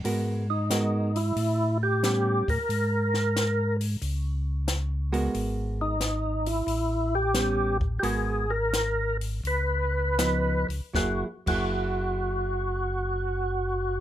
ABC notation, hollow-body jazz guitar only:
X:1
M:4/4
L:1/8
Q:"Swing" 1/4=90
K:F#mix
V:1 name="Hollow-body jazz guitar"
[G,B,FA] z [G,B,FA] z3 [=G,B,C] z | z6 z [G,B,FA]- | [G,B,FA]2 z4 [=G,B,C] z | [G,B,FA] z4 z [^E,B,D] z |
[F,A,EG] [F,A,EG]6- [F,A,EG] |]